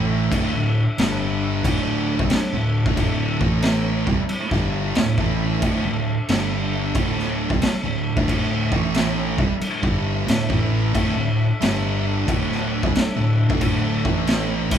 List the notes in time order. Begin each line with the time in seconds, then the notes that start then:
Already playing: A1 A2 E3 A3 D4 A4 E5
0.31 D1 D2 A2, kick, crash
0.54 D1 D2 A2
0.98 G1 G2 D3 G3, snare, crash
1.64 D1 D2 A2 D3 A4 E5, kick, crash
2.19 C2 C3 G3, kick
2.30 muted fingered electric bass stroke, muted distorted electric guitar stroke, snare, crash
2.53 D1 D2 A2
2.86 D1 D2 A2 D3, kick
2.97 kick, crash
3.40 A1 A2 E3 A3, kick
3.62 snare, crash
4.05 C2 C3 G3 D4 A4 E5, kick
4.19 muted fingered electric bass stroke, muted distorted electric guitar stroke
4.29 crash
4.51 G1 G2 D3 G3, kick, snare
4.95 D1 D2 A2, snare, crash
5.18 A1 A2 E3 A3, kick
5.62 D1 D2 A2, kick, crash
5.84 D1 D2 A2
6.29 G1 G2 D3 G3, snare, crash
6.94 D1 D2 A2 D3 E5, kick, crash
7.19 snare
7.50 C2 C3 G3, kick
7.61 muted fingered electric bass stroke, muted distorted electric guitar stroke, snare, crash
7.83 D1 D2 A2
8.16 D1 D2 A2 D3, kick
8.28 kick, crash
8.72 A1 A2 E3 A3, kick
8.95 snare, crash
9.37 C2 C3 G3 D4 A4 E5, kick
9.49 muted distorted electric guitar stroke, muted fingered electric bass stroke
9.61 crash
9.82 G1 G2 D3 G3, kick
10.26 D1 D2 A2, snare, crash
10.49 A1 A2 E3 A3, kick
10.94 D1 D2 A2, kick, crash
11.16 D1 D2 A2
11.62 G1 G2 D3 G3 A4, snare, crash
12.27 D1 D2 A2 D3 E5, kick, crash
12.52 snare
12.83 C2 C3 G3, kick
12.95 muted distorted electric guitar stroke, muted fingered electric bass stroke, snare, crash
13.16 D1 D2 A2
13.50 D1 D2 A2 D3, kick
13.61 kick, crash
14.05 A1 A2 E3 A3, kick
14.27 snare, crash
14.71 C2 C3 G3, kick, crash